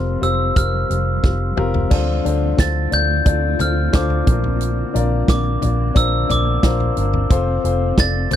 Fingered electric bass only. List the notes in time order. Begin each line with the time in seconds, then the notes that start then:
Already playing: F1
0.22 F1
0.57 F1
0.90 F1
1.24 F1
1.58 F1
1.91 D2
2.25 D2
2.59 D2
2.92 D2
3.26 D2
3.60 D2
3.94 D2
4.27 A#1
4.95 A#1
5.28 A#1
5.63 A#1
5.96 A#1
6.30 A#1
6.63 A#1
6.97 G1
7.31 F1
7.64 F1
7.97 F1
8.32 F1